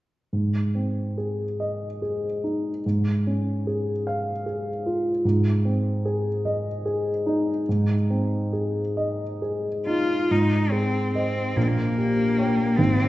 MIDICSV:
0, 0, Header, 1, 3, 480
1, 0, Start_track
1, 0, Key_signature, -4, "major"
1, 0, Tempo, 833333
1, 187, Time_signature, 6, 3, 24, 8
1, 2106, Tempo, 793651
1, 4026, Tempo, 846262
1, 4986, Tempo, 888889
1, 5946, Tempo, 826446
1, 7563, End_track
2, 0, Start_track
2, 0, Title_t, "Grand piano"
2, 0, Program_c, 0, 0
2, 189, Note_on_c, 0, 44, 33
2, 299, Control_c, 0, 64, 127
2, 432, Note_on_c, 0, 60, 30
2, 678, Note_on_c, 0, 68, 30
2, 818, Note_off_c, 0, 60, 0
2, 921, Note_on_c, 0, 75, 32
2, 1063, Note_off_c, 0, 68, 0
2, 1164, Note_on_c, 0, 68, 34
2, 1303, Note_off_c, 0, 75, 0
2, 1405, Note_on_c, 0, 63, 33
2, 1543, Note_off_c, 0, 68, 0
2, 1613, Note_off_c, 0, 44, 0
2, 1640, Note_off_c, 0, 63, 0
2, 1644, Control_c, 0, 64, 0
2, 1648, Note_on_c, 0, 44, 37
2, 1741, Control_c, 0, 64, 127
2, 1883, Note_on_c, 0, 61, 33
2, 2114, Note_on_c, 0, 68, 34
2, 2257, Note_off_c, 0, 61, 0
2, 2355, Note_on_c, 0, 77, 39
2, 2495, Note_off_c, 0, 68, 0
2, 2594, Note_on_c, 0, 68, 37
2, 2733, Note_off_c, 0, 77, 0
2, 2835, Note_on_c, 0, 65, 38
2, 2970, Note_off_c, 0, 68, 0
2, 3044, Note_off_c, 0, 44, 0
2, 3067, Note_off_c, 0, 65, 0
2, 3070, Note_on_c, 0, 44, 41
2, 3072, Control_c, 0, 64, 0
2, 3172, Control_c, 0, 64, 127
2, 3313, Note_on_c, 0, 60, 38
2, 3556, Note_on_c, 0, 68, 39
2, 3693, Note_off_c, 0, 60, 0
2, 3797, Note_on_c, 0, 75, 41
2, 3934, Note_off_c, 0, 68, 0
2, 4040, Note_on_c, 0, 68, 44
2, 4172, Note_off_c, 0, 75, 0
2, 4272, Note_on_c, 0, 63, 42
2, 4408, Note_off_c, 0, 68, 0
2, 4478, Note_off_c, 0, 44, 0
2, 4508, Control_c, 0, 64, 0
2, 4512, Note_on_c, 0, 44, 43
2, 4601, Control_c, 0, 64, 127
2, 4648, Note_off_c, 0, 63, 0
2, 4747, Note_on_c, 0, 60, 37
2, 4989, Note_on_c, 0, 68, 37
2, 5131, Note_off_c, 0, 60, 0
2, 5227, Note_on_c, 0, 75, 41
2, 5367, Note_off_c, 0, 68, 0
2, 5470, Note_on_c, 0, 68, 38
2, 5613, Note_off_c, 0, 75, 0
2, 5712, Note_on_c, 0, 63, 34
2, 5857, Note_off_c, 0, 68, 0
2, 5931, Note_off_c, 0, 44, 0
2, 5946, Note_off_c, 0, 63, 0
2, 5950, Note_on_c, 0, 44, 39
2, 5956, Control_c, 0, 64, 0
2, 6043, Control_c, 0, 64, 127
2, 6189, Note_on_c, 0, 68, 31
2, 6440, Note_on_c, 0, 72, 28
2, 6441, Note_on_c, 0, 75, 30
2, 6580, Note_off_c, 0, 68, 0
2, 6658, Note_off_c, 0, 44, 0
2, 6658, Note_off_c, 0, 72, 0
2, 6658, Note_off_c, 0, 75, 0
2, 6681, Note_on_c, 0, 34, 41
2, 6688, Control_c, 0, 64, 0
2, 6791, Control_c, 0, 64, 127
2, 6922, Note_on_c, 0, 67, 34
2, 7153, Note_on_c, 0, 73, 32
2, 7158, Note_on_c, 0, 79, 35
2, 7295, Note_off_c, 0, 67, 0
2, 7364, Note_off_c, 0, 73, 0
2, 7366, Note_off_c, 0, 79, 0
2, 7368, Note_off_c, 0, 34, 0
2, 7387, Note_on_c, 0, 32, 41
2, 7396, Control_c, 0, 64, 0
2, 7493, Control_c, 0, 64, 127
2, 7563, Note_off_c, 0, 32, 0
2, 7563, End_track
3, 0, Start_track
3, 0, Title_t, "Cello"
3, 0, Program_c, 1, 42
3, 5713, Note_on_c, 1, 65, 54
3, 5953, Note_on_c, 1, 63, 46
3, 5962, Note_off_c, 1, 65, 0
3, 6182, Note_on_c, 1, 60, 50
3, 6191, Note_off_c, 1, 63, 0
3, 6429, Note_off_c, 1, 60, 0
3, 6435, Note_on_c, 1, 60, 48
3, 6679, Note_on_c, 1, 58, 54
3, 6688, Note_off_c, 1, 60, 0
3, 6718, Note_on_c, 1, 60, 45
3, 6727, Note_off_c, 1, 58, 0
3, 6746, Note_on_c, 1, 58, 54
3, 6754, Note_off_c, 1, 60, 0
3, 7374, Note_on_c, 1, 60, 53
3, 7383, Note_off_c, 1, 58, 0
3, 7563, Note_off_c, 1, 60, 0
3, 7563, End_track
0, 0, End_of_file